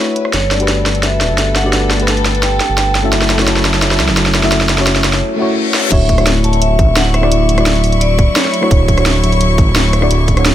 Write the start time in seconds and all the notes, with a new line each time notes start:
Already playing: A3 D4 E4 F#4 B4 C#5
0.16 closed hi-hat
0.25 cross-stick
0.33 G1 B3 A4 C#5, snare, closed hi-hat
0.51 D5, snare, closed hi-hat
0.57 A3 D4 F#4, closed hi-hat
0.61 G4 B4
0.68 snare, closed hi-hat
0.86 G1, snare, closed hi-hat
0.95 closed hi-hat
1.03 E5, snare, closed hi-hat
1.21 D1, snare, closed hi-hat
1.30 G1
1.38 snare, closed hi-hat
1.56 F#5, snare, closed hi-hat
1.63 A3 D4 F#4 G4 D5
1.73 G1, snare, closed hi-hat
1.91 snare, closed hi-hat
1.97 A3 D4 A4, closed hi-hat
2.01 G4 B4
2.08 A5, snare, closed hi-hat
2.17 closed hi-hat
2.25 G1, snare, closed hi-hat
2.35 closed hi-hat
2.43 G5, snare, closed hi-hat
2.60 snare, closed hi-hat
2.69 G1
2.78 G5, snare, closed hi-hat
2.95 A5, snare, closed hi-hat
3.03 A3 C#4 E4 F#4 E5
3.12 F#1 F#3 E4, snare, closed hi-hat
3.22 snare
3.30 snare, closed hi-hat
3.36 A3 C#4 E4, snare, closed hi-hat
3.40 F#4 C#5
3.48 snare, closed hi-hat
3.56 snare
3.65 F#1, snare, closed hi-hat
3.74 snare, closed hi-hat
3.82 snare, closed hi-hat
3.91 snare
4.00 C#2, snare, closed hi-hat
4.09 F#1, snare
4.17 snare, closed hi-hat
4.26 snare
4.35 snare, closed hi-hat
4.42 A3 C#4 E4 F#4 E5, snare
4.52 F#1, snare, closed hi-hat
4.61 snare
4.69 snare, closed hi-hat
4.75 A3 C#4 E4, snare, closed hi-hat
4.80 F#4 C#5
4.87 snare, closed hi-hat
4.96 snare, closed hi-hat
5.04 F#1, snare, closed hi-hat
5.13 snare, closed hi-hat
5.22 reverse cymbal
5.36 A3 C#4 E4
5.40 F#4 C#5
5.74 snare
5.90 D1 F#3 A3 D4 E4 F#4 C#5 E5 C#6, kick, closed hi-hat, crash
6.09 kick, closed hi-hat
6.15 A3 D4 E4, cross-stick, closed hi-hat
6.19 F#4 C#5
6.27 snare, closed hi-hat
6.44 D1 A5, closed hi-hat
6.53 closed hi-hat
6.62 E5, closed hi-hat
6.79 A1, kick, closed hi-hat
6.88 D1
6.96 F#5, snare, closed hi-hat
7.14 E5, cross-stick, closed hi-hat
7.21 A3 D4 E4 F#4 D5, cross-stick
7.31 D1, closed hi-hat
7.49 closed hi-hat
7.55 A3 D4 E4, cross-stick, closed hi-hat
7.59 F#4 D5
7.66 snare, closed hi-hat
7.75 closed hi-hat
7.84 D1, open hi-hat
7.92 closed hi-hat
8.01 D5, closed hi-hat
8.19 D1, kick, closed hi-hat
8.36 C#5, snare, closed hi-hat
8.45 snare
8.54 closed hi-hat
8.61 A3 D4 E4 F#4 C#5, cross-stick
8.71 D1, kick, closed hi-hat
8.88 kick, closed hi-hat
8.94 A3 D4 E4, cross-stick, closed hi-hat
8.99 F#4 C#5
9.06 snare, closed hi-hat
9.23 D1, closed hi-hat
9.32 closed hi-hat
9.41 closed hi-hat
9.58 A1, kick, closed hi-hat
9.67 D1
9.76 snare, closed hi-hat
9.93 cross-stick, closed hi-hat
10.01 A3 D4 E4 F#4 D5, cross-stick
10.10 D1, closed hi-hat
10.28 kick, closed hi-hat
10.34 A3 D4 E4, cross-stick, closed hi-hat
10.38 F#4 C#5
10.46 snare, closed hi-hat